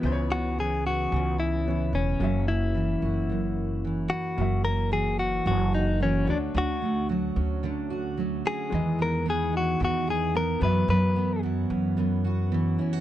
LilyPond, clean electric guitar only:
\new Staff \with { instrumentName = "Clean electric guitar" } { \time 4/4 \key fis \mixolydian \tempo 4 = 111 r8 fis'8 gis'8 fis'4 e'4 cis'8~ | cis'8 e'2. fis'8~ | fis'8 ais'8 gis'8 fis'8 fis'8 dis'8 cis'8 d'8 | fis'4 r2 r8 gis'8~ |
gis'8 ais'8 gis'8 fis'8 fis'8 gis'8 ais'8 b'8 | b'4 r2. | }